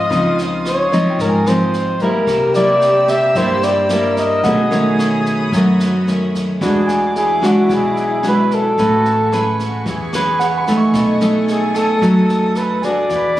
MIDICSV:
0, 0, Header, 1, 8, 480
1, 0, Start_track
1, 0, Tempo, 541028
1, 97, Time_signature, 4, 2, 24, 8
1, 11886, End_track
2, 0, Start_track
2, 0, Title_t, "Violin section"
2, 0, Program_c, 0, 48
2, 0, Note_on_c, 0, 77, 60
2, 0, Note_on_c, 0, 84, 63
2, 0, Note_on_c, 0, 87, 77
2, 1980, Note_off_c, 0, 87, 0
2, 1981, Note_off_c, 0, 77, 0
2, 1985, Note_off_c, 0, 84, 0
2, 2021, Note_on_c, 0, 72, 68
2, 2025, Note_on_c, 0, 82, 63
2, 2027, Note_on_c, 0, 88, 78
2, 3919, Note_off_c, 0, 72, 0
2, 3921, Note_off_c, 0, 82, 0
2, 3922, Note_off_c, 0, 88, 0
2, 3938, Note_on_c, 0, 73, 70
2, 3940, Note_on_c, 0, 87, 80
2, 3941, Note_on_c, 0, 83, 65
2, 5840, Note_off_c, 0, 73, 0
2, 5840, Note_off_c, 0, 87, 0
2, 5841, Note_off_c, 0, 83, 0
2, 5857, Note_on_c, 0, 68, 67
2, 5860, Note_on_c, 0, 78, 60
2, 5866, Note_on_c, 0, 86, 75
2, 7760, Note_off_c, 0, 68, 0
2, 7762, Note_off_c, 0, 78, 0
2, 7765, Note_off_c, 0, 86, 0
2, 7788, Note_on_c, 0, 71, 69
2, 7789, Note_on_c, 0, 80, 59
2, 7789, Note_on_c, 0, 85, 75
2, 9686, Note_off_c, 0, 71, 0
2, 9709, Note_on_c, 0, 69, 69
2, 9714, Note_on_c, 0, 87, 75
2, 11591, Note_off_c, 0, 80, 0
2, 11591, Note_off_c, 0, 85, 0
2, 11606, Note_off_c, 0, 69, 0
2, 11609, Note_off_c, 0, 87, 0
2, 11615, Note_on_c, 0, 78, 57
2, 11617, Note_on_c, 0, 68, 69
2, 11622, Note_on_c, 0, 86, 76
2, 11886, Note_off_c, 0, 68, 0
2, 11886, Note_off_c, 0, 78, 0
2, 11886, Note_off_c, 0, 86, 0
2, 11886, End_track
3, 0, Start_track
3, 0, Title_t, "Grand piano"
3, 0, Program_c, 1, 0
3, 0, Control_c, 1, 64, 127
3, 819, Note_on_c, 1, 75, 35
3, 976, Note_on_c, 1, 79, 38
3, 1144, Note_on_c, 1, 80, 39
3, 1981, Note_off_c, 1, 75, 0
3, 2024, Note_off_c, 1, 80, 0
3, 2026, Control_c, 1, 64, 0
3, 2360, Note_off_c, 1, 79, 0
3, 3937, Note_on_c, 1, 78, 51
3, 4113, Control_c, 1, 64, 127
3, 5514, Note_off_c, 1, 78, 0
3, 5869, Control_c, 1, 64, 0
3, 6035, Control_c, 1, 64, 127
3, 6093, Note_on_c, 1, 80, 47
3, 7673, Note_off_c, 1, 80, 0
3, 7790, Control_c, 1, 64, 0
3, 7946, Control_c, 1, 64, 127
3, 9222, Note_on_c, 1, 78, 50
3, 9381, Note_on_c, 1, 83, 38
3, 9556, Note_on_c, 1, 85, 36
3, 9712, Control_c, 1, 64, 0
3, 9854, Control_c, 1, 64, 127
3, 9906, Note_off_c, 1, 78, 0
3, 10046, Note_off_c, 1, 83, 0
3, 10193, Note_off_c, 1, 85, 0
3, 11372, Note_on_c, 1, 80, 43
3, 11633, Control_c, 1, 64, 0
3, 11810, Control_c, 1, 64, 127
3, 11823, Note_off_c, 1, 80, 0
3, 11886, End_track
4, 0, Start_track
4, 0, Title_t, "Flugelhorn"
4, 0, Program_c, 2, 56
4, 0, Note_on_c, 2, 75, 91
4, 348, Note_off_c, 2, 75, 0
4, 591, Note_on_c, 2, 73, 76
4, 1075, Note_on_c, 2, 70, 78
4, 1088, Note_off_c, 2, 73, 0
4, 1315, Note_on_c, 2, 72, 85
4, 1328, Note_off_c, 2, 70, 0
4, 1790, Note_on_c, 2, 70, 84
4, 1803, Note_off_c, 2, 72, 0
4, 2258, Note_off_c, 2, 70, 0
4, 2264, Note_on_c, 2, 74, 94
4, 2747, Note_on_c, 2, 76, 89
4, 2760, Note_off_c, 2, 74, 0
4, 2986, Note_on_c, 2, 72, 89
4, 3000, Note_off_c, 2, 76, 0
4, 3229, Note_on_c, 2, 74, 88
4, 3242, Note_off_c, 2, 72, 0
4, 3703, Note_off_c, 2, 74, 0
4, 3715, Note_on_c, 2, 75, 86
4, 4391, Note_off_c, 2, 75, 0
4, 6361, Note_on_c, 2, 68, 77
4, 6614, Note_on_c, 2, 66, 72
4, 6628, Note_off_c, 2, 68, 0
4, 6856, Note_on_c, 2, 68, 82
4, 6869, Note_off_c, 2, 66, 0
4, 7318, Note_off_c, 2, 68, 0
4, 7350, Note_on_c, 2, 71, 90
4, 7581, Note_on_c, 2, 69, 84
4, 7595, Note_off_c, 2, 71, 0
4, 8521, Note_off_c, 2, 69, 0
4, 10202, Note_on_c, 2, 68, 77
4, 10434, Note_on_c, 2, 69, 83
4, 10447, Note_off_c, 2, 68, 0
4, 11156, Note_on_c, 2, 71, 82
4, 11169, Note_off_c, 2, 69, 0
4, 11397, Note_on_c, 2, 74, 93
4, 11410, Note_off_c, 2, 71, 0
4, 11886, Note_off_c, 2, 74, 0
4, 11886, End_track
5, 0, Start_track
5, 0, Title_t, "Flute section"
5, 0, Program_c, 3, 73
5, 0, Note_on_c, 3, 65, 106
5, 1747, Note_off_c, 3, 65, 0
5, 2013, Note_on_c, 3, 67, 94
5, 3419, Note_off_c, 3, 67, 0
5, 3460, Note_on_c, 3, 70, 98
5, 3905, Note_off_c, 3, 70, 0
5, 3950, Note_on_c, 3, 68, 102
5, 4900, Note_on_c, 3, 66, 76
5, 4904, Note_off_c, 3, 68, 0
5, 5583, Note_off_c, 3, 66, 0
5, 5862, Note_on_c, 3, 68, 98
5, 6307, Note_off_c, 3, 68, 0
5, 6343, Note_on_c, 3, 64, 89
5, 7746, Note_off_c, 3, 64, 0
5, 7784, Note_on_c, 3, 66, 87
5, 8262, Note_off_c, 3, 66, 0
5, 8270, Note_on_c, 3, 64, 74
5, 8323, Note_off_c, 3, 64, 0
5, 8508, Note_on_c, 3, 66, 70
5, 8728, Note_off_c, 3, 66, 0
5, 8754, Note_on_c, 3, 68, 79
5, 9468, Note_off_c, 3, 68, 0
5, 9706, Note_on_c, 3, 69, 104
5, 11589, Note_off_c, 3, 69, 0
5, 11626, Note_on_c, 3, 71, 111
5, 11886, Note_off_c, 3, 71, 0
5, 11886, End_track
6, 0, Start_track
6, 0, Title_t, "Nylon-string guitar"
6, 0, Program_c, 4, 24
6, 82, Note_on_c, 4, 49, 50
6, 90, Note_on_c, 4, 53, 55
6, 90, Note_on_c, 4, 60, 52
6, 94, Note_on_c, 4, 63, 63
6, 773, Note_off_c, 4, 53, 0
6, 774, Note_off_c, 4, 60, 0
6, 777, Note_off_c, 4, 63, 0
6, 819, Note_on_c, 4, 53, 63
6, 827, Note_on_c, 4, 60, 60
6, 831, Note_on_c, 4, 63, 71
6, 1025, Note_off_c, 4, 49, 0
6, 1063, Note_on_c, 4, 44, 53
6, 1259, Note_off_c, 4, 53, 0
6, 1263, Note_off_c, 4, 60, 0
6, 1265, Note_off_c, 4, 63, 0
6, 1305, Note_on_c, 4, 53, 58
6, 1309, Note_on_c, 4, 60, 60
6, 1312, Note_on_c, 4, 63, 57
6, 1743, Note_off_c, 4, 53, 0
6, 1743, Note_off_c, 4, 60, 0
6, 1745, Note_off_c, 4, 63, 0
6, 1792, Note_on_c, 4, 55, 53
6, 1798, Note_on_c, 4, 58, 57
6, 1802, Note_on_c, 4, 64, 62
6, 1995, Note_off_c, 4, 44, 0
6, 2037, Note_on_c, 4, 48, 55
6, 2262, Note_off_c, 4, 55, 0
6, 2264, Note_off_c, 4, 58, 0
6, 2269, Note_off_c, 4, 64, 0
6, 2272, Note_on_c, 4, 55, 58
6, 2277, Note_on_c, 4, 58, 65
6, 2280, Note_on_c, 4, 64, 66
6, 2946, Note_off_c, 4, 55, 0
6, 2947, Note_off_c, 4, 58, 0
6, 2949, Note_off_c, 4, 64, 0
6, 2962, Note_off_c, 4, 48, 0
6, 2984, Note_on_c, 4, 55, 54
6, 2985, Note_on_c, 4, 43, 49
6, 2989, Note_on_c, 4, 58, 53
6, 2991, Note_on_c, 4, 64, 61
6, 3421, Note_off_c, 4, 55, 0
6, 3424, Note_off_c, 4, 58, 0
6, 3424, Note_off_c, 4, 64, 0
6, 3457, Note_on_c, 4, 55, 48
6, 3463, Note_on_c, 4, 58, 44
6, 3464, Note_on_c, 4, 64, 52
6, 3917, Note_off_c, 4, 43, 0
6, 3917, Note_off_c, 4, 55, 0
6, 3921, Note_off_c, 4, 58, 0
6, 3921, Note_off_c, 4, 64, 0
6, 3943, Note_on_c, 4, 51, 47
6, 3945, Note_on_c, 4, 47, 51
6, 3946, Note_on_c, 4, 57, 51
6, 3947, Note_on_c, 4, 61, 52
6, 4081, Note_off_c, 4, 51, 0
6, 4081, Note_off_c, 4, 57, 0
6, 4083, Note_off_c, 4, 61, 0
6, 4178, Note_on_c, 4, 51, 59
6, 4183, Note_on_c, 4, 57, 64
6, 4183, Note_on_c, 4, 61, 65
6, 4860, Note_off_c, 4, 51, 0
6, 4861, Note_off_c, 4, 61, 0
6, 4862, Note_off_c, 4, 57, 0
6, 4878, Note_off_c, 4, 47, 0
6, 4908, Note_on_c, 4, 42, 53
6, 4912, Note_on_c, 4, 51, 48
6, 4914, Note_on_c, 4, 57, 49
6, 4917, Note_on_c, 4, 61, 59
6, 5213, Note_off_c, 4, 51, 0
6, 5215, Note_off_c, 4, 57, 0
6, 5215, Note_off_c, 4, 61, 0
6, 5386, Note_on_c, 4, 51, 44
6, 5390, Note_on_c, 4, 57, 42
6, 5394, Note_on_c, 4, 61, 51
6, 5840, Note_off_c, 4, 42, 0
6, 5843, Note_off_c, 4, 51, 0
6, 5845, Note_off_c, 4, 57, 0
6, 5846, Note_off_c, 4, 61, 0
6, 5865, Note_on_c, 4, 52, 49
6, 5869, Note_on_c, 4, 56, 50
6, 5872, Note_on_c, 4, 62, 51
6, 5872, Note_on_c, 4, 66, 60
6, 6545, Note_off_c, 4, 56, 0
6, 6545, Note_off_c, 4, 62, 0
6, 6547, Note_off_c, 4, 66, 0
6, 6578, Note_on_c, 4, 56, 52
6, 6584, Note_on_c, 4, 62, 60
6, 6590, Note_on_c, 4, 66, 63
6, 6799, Note_off_c, 4, 52, 0
6, 6821, Note_on_c, 4, 47, 49
6, 7262, Note_off_c, 4, 56, 0
6, 7263, Note_off_c, 4, 66, 0
6, 7264, Note_off_c, 4, 62, 0
6, 7303, Note_on_c, 4, 56, 48
6, 7307, Note_on_c, 4, 62, 49
6, 7313, Note_on_c, 4, 66, 50
6, 7757, Note_off_c, 4, 47, 0
6, 7763, Note_off_c, 4, 56, 0
6, 7763, Note_off_c, 4, 62, 0
6, 7767, Note_off_c, 4, 66, 0
6, 7792, Note_on_c, 4, 57, 48
6, 7795, Note_on_c, 4, 61, 51
6, 7801, Note_on_c, 4, 71, 58
6, 8096, Note_off_c, 4, 61, 0
6, 8100, Note_off_c, 4, 71, 0
6, 8274, Note_on_c, 4, 61, 55
6, 8279, Note_on_c, 4, 68, 52
6, 8283, Note_on_c, 4, 71, 58
6, 8723, Note_off_c, 4, 57, 0
6, 8755, Note_on_c, 4, 52, 52
6, 8949, Note_off_c, 4, 61, 0
6, 8950, Note_off_c, 4, 68, 0
6, 8954, Note_off_c, 4, 71, 0
6, 8999, Note_on_c, 4, 61, 53
6, 9002, Note_on_c, 4, 68, 61
6, 9006, Note_on_c, 4, 71, 62
6, 9432, Note_off_c, 4, 61, 0
6, 9433, Note_off_c, 4, 68, 0
6, 9435, Note_off_c, 4, 71, 0
6, 9477, Note_on_c, 4, 57, 57
6, 9479, Note_on_c, 4, 63, 51
6, 9684, Note_off_c, 4, 52, 0
6, 9712, Note_on_c, 4, 47, 51
6, 9934, Note_off_c, 4, 63, 0
6, 9937, Note_off_c, 4, 57, 0
6, 9946, Note_on_c, 4, 57, 57
6, 9947, Note_on_c, 4, 63, 62
6, 10625, Note_off_c, 4, 63, 0
6, 10626, Note_off_c, 4, 57, 0
6, 10643, Note_off_c, 4, 47, 0
6, 10661, Note_on_c, 4, 54, 50
6, 10665, Note_on_c, 4, 57, 52
6, 10670, Note_on_c, 4, 63, 49
6, 11344, Note_off_c, 4, 57, 0
6, 11347, Note_off_c, 4, 63, 0
6, 11388, Note_on_c, 4, 62, 51
6, 11393, Note_on_c, 4, 66, 53
6, 11399, Note_on_c, 4, 68, 58
6, 11598, Note_off_c, 4, 54, 0
6, 11627, Note_on_c, 4, 52, 51
6, 11827, Note_off_c, 4, 62, 0
6, 11829, Note_off_c, 4, 66, 0
6, 11832, Note_off_c, 4, 68, 0
6, 11886, Note_off_c, 4, 52, 0
6, 11886, End_track
7, 0, Start_track
7, 0, Title_t, "Fingered electric bass"
7, 0, Program_c, 5, 33
7, 98, Note_on_c, 5, 37, 85
7, 1021, Note_off_c, 5, 37, 0
7, 1057, Note_on_c, 5, 32, 81
7, 1980, Note_off_c, 5, 32, 0
7, 2015, Note_on_c, 5, 36, 90
7, 2940, Note_off_c, 5, 36, 0
7, 2975, Note_on_c, 5, 43, 83
7, 3900, Note_off_c, 5, 43, 0
7, 3942, Note_on_c, 5, 35, 90
7, 4864, Note_off_c, 5, 35, 0
7, 4901, Note_on_c, 5, 42, 87
7, 5824, Note_off_c, 5, 42, 0
7, 5865, Note_on_c, 5, 40, 89
7, 6787, Note_off_c, 5, 40, 0
7, 6826, Note_on_c, 5, 35, 85
7, 7748, Note_off_c, 5, 35, 0
7, 7787, Note_on_c, 5, 33, 91
7, 8709, Note_off_c, 5, 33, 0
7, 8747, Note_on_c, 5, 40, 90
7, 9669, Note_off_c, 5, 40, 0
7, 9705, Note_on_c, 5, 35, 102
7, 10628, Note_off_c, 5, 35, 0
7, 10663, Note_on_c, 5, 42, 86
7, 11587, Note_off_c, 5, 42, 0
7, 11617, Note_on_c, 5, 40, 94
7, 11886, Note_off_c, 5, 40, 0
7, 11886, End_track
8, 0, Start_track
8, 0, Title_t, "Drums"
8, 97, Note_on_c, 9, 36, 54
8, 97, Note_on_c, 9, 38, 22
8, 185, Note_off_c, 9, 36, 0
8, 186, Note_off_c, 9, 38, 0
8, 341, Note_on_c, 9, 38, 23
8, 430, Note_off_c, 9, 38, 0
8, 580, Note_on_c, 9, 37, 54
8, 580, Note_on_c, 9, 38, 23
8, 668, Note_off_c, 9, 37, 0
8, 668, Note_off_c, 9, 38, 0
8, 817, Note_on_c, 9, 36, 22
8, 822, Note_on_c, 9, 38, 21
8, 906, Note_off_c, 9, 36, 0
8, 911, Note_off_c, 9, 38, 0
8, 1056, Note_on_c, 9, 36, 56
8, 1058, Note_on_c, 9, 38, 23
8, 1145, Note_off_c, 9, 36, 0
8, 1146, Note_off_c, 9, 38, 0
8, 1298, Note_on_c, 9, 37, 53
8, 1298, Note_on_c, 9, 38, 22
8, 1386, Note_off_c, 9, 37, 0
8, 1386, Note_off_c, 9, 38, 0
8, 1538, Note_on_c, 9, 38, 22
8, 1627, Note_off_c, 9, 38, 0
8, 1772, Note_on_c, 9, 38, 22
8, 1774, Note_on_c, 9, 36, 22
8, 1861, Note_off_c, 9, 38, 0
8, 1863, Note_off_c, 9, 36, 0
8, 2015, Note_on_c, 9, 36, 52
8, 2017, Note_on_c, 9, 37, 55
8, 2017, Note_on_c, 9, 38, 22
8, 2103, Note_off_c, 9, 36, 0
8, 2106, Note_off_c, 9, 37, 0
8, 2106, Note_off_c, 9, 38, 0
8, 2253, Note_on_c, 9, 38, 22
8, 2342, Note_off_c, 9, 38, 0
8, 2495, Note_on_c, 9, 38, 24
8, 2584, Note_off_c, 9, 38, 0
8, 2732, Note_on_c, 9, 37, 53
8, 2732, Note_on_c, 9, 38, 22
8, 2733, Note_on_c, 9, 36, 21
8, 2820, Note_off_c, 9, 37, 0
8, 2820, Note_off_c, 9, 38, 0
8, 2822, Note_off_c, 9, 36, 0
8, 2971, Note_on_c, 9, 38, 23
8, 2975, Note_on_c, 9, 36, 57
8, 3060, Note_off_c, 9, 38, 0
8, 3064, Note_off_c, 9, 36, 0
8, 3215, Note_on_c, 9, 38, 23
8, 3303, Note_off_c, 9, 38, 0
8, 3452, Note_on_c, 9, 37, 57
8, 3452, Note_on_c, 9, 38, 24
8, 3541, Note_off_c, 9, 37, 0
8, 3541, Note_off_c, 9, 38, 0
8, 3696, Note_on_c, 9, 36, 22
8, 3696, Note_on_c, 9, 38, 22
8, 3784, Note_off_c, 9, 38, 0
8, 3785, Note_off_c, 9, 36, 0
8, 3934, Note_on_c, 9, 38, 23
8, 3937, Note_on_c, 9, 36, 57
8, 4023, Note_off_c, 9, 38, 0
8, 4026, Note_off_c, 9, 36, 0
8, 4184, Note_on_c, 9, 38, 22
8, 4272, Note_off_c, 9, 38, 0
8, 4426, Note_on_c, 9, 37, 54
8, 4426, Note_on_c, 9, 38, 22
8, 4515, Note_off_c, 9, 37, 0
8, 4515, Note_off_c, 9, 38, 0
8, 4660, Note_on_c, 9, 36, 21
8, 4666, Note_on_c, 9, 38, 22
8, 4749, Note_off_c, 9, 36, 0
8, 4755, Note_off_c, 9, 38, 0
8, 4901, Note_on_c, 9, 36, 55
8, 4903, Note_on_c, 9, 38, 24
8, 4990, Note_off_c, 9, 36, 0
8, 4992, Note_off_c, 9, 38, 0
8, 5143, Note_on_c, 9, 37, 53
8, 5143, Note_on_c, 9, 38, 21
8, 5232, Note_off_c, 9, 37, 0
8, 5232, Note_off_c, 9, 38, 0
8, 5390, Note_on_c, 9, 38, 24
8, 5479, Note_off_c, 9, 38, 0
8, 5625, Note_on_c, 9, 36, 21
8, 5632, Note_on_c, 9, 38, 23
8, 5714, Note_off_c, 9, 36, 0
8, 5721, Note_off_c, 9, 38, 0
8, 5865, Note_on_c, 9, 36, 53
8, 5868, Note_on_c, 9, 37, 53
8, 5868, Note_on_c, 9, 38, 21
8, 5954, Note_off_c, 9, 36, 0
8, 5956, Note_off_c, 9, 37, 0
8, 5956, Note_off_c, 9, 38, 0
8, 6109, Note_on_c, 9, 38, 22
8, 6198, Note_off_c, 9, 38, 0
8, 6350, Note_on_c, 9, 38, 22
8, 6439, Note_off_c, 9, 38, 0
8, 6587, Note_on_c, 9, 36, 21
8, 6593, Note_on_c, 9, 37, 54
8, 6593, Note_on_c, 9, 38, 21
8, 6676, Note_off_c, 9, 36, 0
8, 6682, Note_off_c, 9, 37, 0
8, 6682, Note_off_c, 9, 38, 0
8, 6826, Note_on_c, 9, 36, 57
8, 6827, Note_on_c, 9, 38, 21
8, 6915, Note_off_c, 9, 36, 0
8, 6916, Note_off_c, 9, 38, 0
8, 7067, Note_on_c, 9, 38, 21
8, 7155, Note_off_c, 9, 38, 0
8, 7302, Note_on_c, 9, 37, 53
8, 7302, Note_on_c, 9, 38, 22
8, 7391, Note_off_c, 9, 37, 0
8, 7391, Note_off_c, 9, 38, 0
8, 7547, Note_on_c, 9, 36, 22
8, 7551, Note_on_c, 9, 38, 21
8, 7636, Note_off_c, 9, 36, 0
8, 7639, Note_off_c, 9, 38, 0
8, 7788, Note_on_c, 9, 36, 54
8, 7788, Note_on_c, 9, 38, 21
8, 7877, Note_off_c, 9, 36, 0
8, 7877, Note_off_c, 9, 38, 0
8, 8033, Note_on_c, 9, 38, 22
8, 8122, Note_off_c, 9, 38, 0
8, 8271, Note_on_c, 9, 37, 52
8, 8271, Note_on_c, 9, 38, 22
8, 8360, Note_off_c, 9, 37, 0
8, 8360, Note_off_c, 9, 38, 0
8, 8507, Note_on_c, 9, 36, 21
8, 8511, Note_on_c, 9, 38, 20
8, 8596, Note_off_c, 9, 36, 0
8, 8600, Note_off_c, 9, 38, 0
8, 8746, Note_on_c, 9, 36, 54
8, 8749, Note_on_c, 9, 38, 22
8, 8835, Note_off_c, 9, 36, 0
8, 8837, Note_off_c, 9, 38, 0
8, 8986, Note_on_c, 9, 37, 53
8, 8986, Note_on_c, 9, 38, 21
8, 9075, Note_off_c, 9, 37, 0
8, 9075, Note_off_c, 9, 38, 0
8, 9227, Note_on_c, 9, 38, 21
8, 9316, Note_off_c, 9, 38, 0
8, 9464, Note_on_c, 9, 36, 21
8, 9467, Note_on_c, 9, 38, 22
8, 9553, Note_off_c, 9, 36, 0
8, 9556, Note_off_c, 9, 38, 0
8, 9703, Note_on_c, 9, 36, 53
8, 9704, Note_on_c, 9, 37, 52
8, 9704, Note_on_c, 9, 38, 21
8, 9792, Note_off_c, 9, 36, 0
8, 9792, Note_off_c, 9, 37, 0
8, 9792, Note_off_c, 9, 38, 0
8, 9942, Note_on_c, 9, 38, 22
8, 10031, Note_off_c, 9, 38, 0
8, 10184, Note_on_c, 9, 38, 22
8, 10272, Note_off_c, 9, 38, 0
8, 10421, Note_on_c, 9, 36, 20
8, 10421, Note_on_c, 9, 37, 55
8, 10421, Note_on_c, 9, 38, 21
8, 10509, Note_off_c, 9, 36, 0
8, 10510, Note_off_c, 9, 37, 0
8, 10510, Note_off_c, 9, 38, 0
8, 10662, Note_on_c, 9, 36, 53
8, 10664, Note_on_c, 9, 38, 21
8, 10751, Note_off_c, 9, 36, 0
8, 10753, Note_off_c, 9, 38, 0
8, 10902, Note_on_c, 9, 38, 21
8, 10991, Note_off_c, 9, 38, 0
8, 11135, Note_on_c, 9, 37, 56
8, 11135, Note_on_c, 9, 38, 23
8, 11224, Note_off_c, 9, 37, 0
8, 11224, Note_off_c, 9, 38, 0
8, 11379, Note_on_c, 9, 38, 22
8, 11381, Note_on_c, 9, 36, 21
8, 11468, Note_off_c, 9, 38, 0
8, 11469, Note_off_c, 9, 36, 0
8, 11615, Note_on_c, 9, 38, 20
8, 11619, Note_on_c, 9, 36, 50
8, 11703, Note_off_c, 9, 38, 0
8, 11708, Note_off_c, 9, 36, 0
8, 11857, Note_on_c, 9, 38, 21
8, 11886, Note_off_c, 9, 38, 0
8, 11886, End_track
0, 0, End_of_file